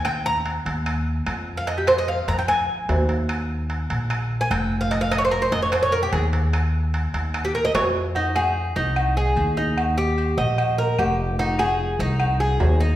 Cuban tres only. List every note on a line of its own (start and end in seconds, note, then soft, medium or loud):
0.05 0.25 G5 medium
0.26 0.38 A#5 loud
1.57 1.67 F5 medium
1.67 1.77 D#5 medium
1.78 1.87 G4 medium
1.88 1.97 C5 loud
1.98 2.08 D#5 medium
2.08 2.28 F5 medium
2.28 2.38 A#5 loud
2.39 2.48 G5 medium
2.48 3.25 G#5 medium
4.41 4.50 G#5 loud
4.51 4.79 G5 medium
4.81 4.91 F5 medium
4.91 5.01 D#5 loud
5.01 5.11 F5 loud
5.11 5.18 D#5 loud
5.18 5.24 C#5 loud
5.25 5.31 C5 medium
5.31 5.42 A#4 loud
5.42 5.52 C5 medium
5.52 5.62 D#5 loud
5.62 5.72 C#5 medium
5.72 5.82 C5 medium
5.83 5.92 C#5 medium
5.92 6.02 A#4 loud
6.03 6.12 G4 medium
6.13 6.25 G#4 medium
7.45 7.54 G4 medium
7.55 7.65 A#4 medium
7.65 7.74 D#5 loud
7.75 7.87 C#5 loud
8.16 8.35 D#4 medium
8.36 8.75 G#4 medium
8.76 9.15 D#4 medium
9.17 9.56 G#4 medium
9.57 9.96 D#4 medium
9.98 10.37 G4 medium
10.38 10.77 D#5 medium
10.78 10.98 A#4 medium
10.99 11.38 G4 medium
11.39 11.59 D#4 medium
11.59 11.98 G#4 medium
12.00 12.39 D#4 medium
12.40 12.79 G#4 medium
12.80 12.96 D#4 medium